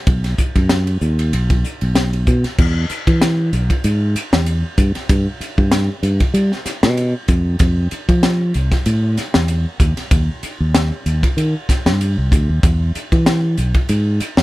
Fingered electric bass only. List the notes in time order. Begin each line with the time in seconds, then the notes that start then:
0.07 B1
0.39 muted fingered electric bass stroke
0.55 F#2
1.01 D#2
1.33 B1
1.82 B1
2.27 B2
2.44 muted fingered electric bass stroke
2.59 E2
2.90 muted fingered electric bass stroke
3.07 E3
3.53 B1
3.84 G#2
4.15 muted fingered electric bass stroke
4.33 E2
4.78 G2
4.96 muted fingered electric bass stroke
5.09 G2
5.40 muted fingered electric bass stroke
5.58 G2
6.03 G2
6.34 G3
6.66 muted fingered electric bass stroke
6.83 B2
7.28 F2
7.60 F2
7.92 muted fingered electric bass stroke
8.09 F3
8.55 C2
8.86 A2
9.18 muted fingered electric bass stroke
9.35 E2
9.80 D#2
9.97 muted fingered electric bass stroke
10.11 D#2
10.43 muted fingered electric bass stroke
10.60 D#2
11.06 D#2
11.37 D#3
11.69 muted fingered electric bass stroke
11.86 G2
12.18 C2
12.32 D2
12.49 D#2
12.63 E2
12.96 muted fingered electric bass stroke
13.12 E3
13.58 B1
13.89 G#2
14.20 muted fingered electric bass stroke
14.37 E2